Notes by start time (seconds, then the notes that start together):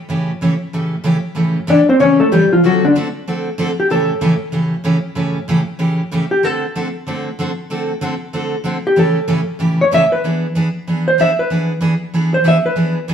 Already playing: A4
0.09 A2 C#3 E3 A3 C#4 G4
0.41 A2 C#3 E3 A3 C#4 G4
0.73 A2 C#3 E3 A3 C#4 G4
1.04 A2 C#3 E3 A3 C#4 G4
1.35 A2 C#3 E3 A3 C#4 G4
1.67 A2 C#3 E3 A3 C#4 D4 G4 D5
1.89 C4 C5
2.00 A2 C#3 E3 A3 C#4 G4 C#5
2.20 A3 A4
2.32 A2 C#3 E3 G3 A3 C#4 G4
2.53 F3 F4
2.64 D3 F#3 A3 C4 F#4 A4
2.84 D3 D4
2.95 D3 A3 C4 F#4 A4
3.28 D3 A3 C4 F#4 A4
3.58 D3 A3 C4 F#4 A4
3.80 G4
3.90 A2 C#3 E3 A3 C#4 G4 A4
4.21 A2 C#3 E3 A3 C#4 G4
4.52 A2 C#3 E3 A3 C#4 G4
4.84 A2 C#3 E3 A3 C#4 G4
5.15 A2 C#3 E3 A3 C#4 G4
5.48 A2 C#3 E3 A3 C#4 G4
5.79 A2 C#3 E3 A3 C#4 G4
6.12 A2 C#3 E3 A3 C#4 G4
6.31 G4
6.43 D3 A3 C4 F#4 A4
6.75 D3 A3 C4 F#4 A4
7.07 D3 A3 C4 F#4 A4
7.39 D3 A3 C4 F#4 A4
7.70 D3 A3 C4 F#4 A4
8.01 D3 A3 C4 F#4 A4
8.33 D3 A3 C4 F#4 A4
8.64 D3 A3 C4 F#4 A4
8.87 G4
8.96 A2 C#3 E3 A3 C#4 G4 A4
9.28 A2 C#3 E3 A3 C#4 G4
9.59 A2 C#3 E3 A3 C#4 G4
9.81 C#5
9.92 A2 C#3 E3 A3 C#4 G4 E5
10.12 B4
10.24 E3 B3 D4 G#4
10.55 E3 B3 D4 G#4
10.87 E3 B3 D4 G#4
11.08 C5
11.18 E3 B3 D4 G#4 E5
11.39 B4
11.50 E3 B3 D4 G#4
11.81 E3 B3 D4 G#4
12.14 E3 B3 D4 G#4
12.34 C5
12.44 E3 B3 D4 G#4 E5
12.66 B4
12.76 E3 B3 D4 G#4
13.08 E3 B3 D4 G#4